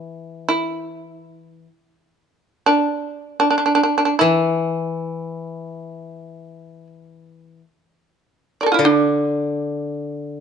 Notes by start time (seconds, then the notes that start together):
Already playing: E3 E4
0.49 E4
2.66 D4
3.40 D4
3.51 D4
3.58 D4
3.66 D4
3.75 D4
3.83 D4
3.98 D4
4.05 D4
4.19 E3 E4
8.61 A#4 D5
8.66 A4
8.72 E4 F4
8.79 D3
8.85 D4